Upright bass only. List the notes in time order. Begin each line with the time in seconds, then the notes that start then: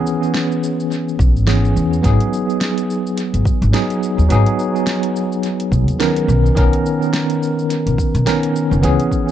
1.19 B1
1.36 G#1
1.76 E2
2.04 G#1
3.34 G#1
3.62 G#1
4.18 D#2
4.30 G#1
5.72 B1
5.88 D#2
6.28 B1
6.57 B1
7.86 B1
8.14 B1
8.71 F#1
8.83 C#2